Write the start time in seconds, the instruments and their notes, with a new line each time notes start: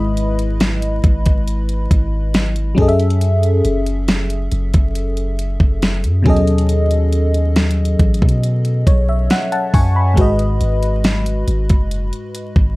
Already playing: 808-style bass G#1, fm electric piano G#2 G#3 E4 B4 D#5 B5
0.17 closed hi-hat
0.39 closed hi-hat
0.60 snare, closed hi-hat
0.82 closed hi-hat
1.04 808-style bass G#1, kick, closed hi-hat
1.26 kick, closed hi-hat
1.47 closed hi-hat
1.69 closed hi-hat
1.91 808-style bass G#1, kick, closed hi-hat
2.34 snare, closed hi-hat
2.56 closed hi-hat
2.75 808-style bass F#2, fm electric piano F#3 C#4 G#4, kick, closed hi-hat
2.80 fm electric piano A4 D#5
2.88 fm electric piano E5, closed hi-hat
3.00 closed hi-hat
3.10 closed hi-hat
3.21 closed hi-hat
3.43 closed hi-hat
3.65 808-style bass F#1, closed hi-hat
3.86 closed hi-hat
4.08 snare, closed hi-hat
4.30 closed hi-hat
4.52 808-style bass F#1, closed hi-hat
4.74 808-style bass F#1, kick, closed hi-hat
4.95 closed hi-hat
5.17 closed hi-hat
5.39 closed hi-hat
5.60 808-style bass F#1, kick
5.82 snare, closed hi-hat
6.04 808-style bass F#2, closed hi-hat
6.22 808-style bass D#2, fm electric piano B2 F#3 C#4, kick, closed hi-hat
6.27 fm electric piano G#4 A4 D#5
6.37 closed hi-hat
6.47 closed hi-hat
6.58 closed hi-hat
6.69 closed hi-hat
6.91 closed hi-hat
7.12 closed hi-hat
7.34 closed hi-hat
7.56 snare, closed hi-hat
7.71 closed hi-hat
7.85 closed hi-hat
7.99 808-style bass A1, kick, closed hi-hat
8.14 closed hi-hat
8.22 808-style bass B2, kick
8.29 closed hi-hat
8.43 closed hi-hat
8.65 closed hi-hat
8.87 808-style bass B1, fm electric piano C#5, kick, closed hi-hat
9.09 fm electric piano E5
9.30 fm electric piano F#5, snare, closed hi-hat
9.52 fm electric piano F#5 A5, closed hi-hat
9.74 808-style bass F#2, fm electric piano G#5 C#6, kick, open hi-hat
9.96 fm electric piano B5
10.14 808-style bass G#1, fm electric piano G#2 G#3 F#4, kick, closed hi-hat
10.19 fm electric piano B4 D#5
10.39 closed hi-hat
10.61 808-style bass G#1, closed hi-hat
10.83 closed hi-hat
11.04 snare, closed hi-hat
11.26 closed hi-hat
11.48 808-style bass G#1, closed hi-hat
11.69 808-style bass F#1, kick, closed hi-hat
11.91 closed hi-hat
12.13 closed hi-hat
12.35 closed hi-hat
12.56 808-style bass G#1, kick